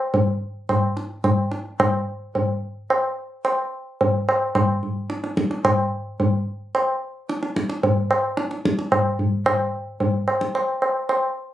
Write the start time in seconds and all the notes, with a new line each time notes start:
0.14 tabla tin, tabla ge
0.69 tabla na, tabla ge
0.97 tabla te
1.24 tabla na, tabla ge
1.52 tabla te
1.80 tabla na, tabla ge
2.35 tabla tin, tabla ge
2.90 tabla na
3.45 tabla na
4.01 tabla tin, tabla ge
4.29 tabla na
4.55 tabla na, tabla ge
4.83 tabla ge
5.10 tabla te
5.24 tabla te
5.37 tabla ke
5.51 tabla te
5.65 tabla na, tabla ge
6.20 tabla tin, tabla ge
6.75 tabla na
7.29 tabla te
7.43 tabla te
7.56 tabla ke
7.70 tabla te
7.83 tabla tin, tabla ge
8.11 tabla na
8.37 tabla te
8.51 tabla te
8.65 tabla ke
8.79 tabla te
8.92 tabla na, tabla ge
9.19 tabla ge
9.46 tabla na, tabla ge
10.00 tabla tin, tabla ge
10.28 tabla na
10.41 tabla ke
10.55 tabla na
10.82 tabla na
11.09 tabla na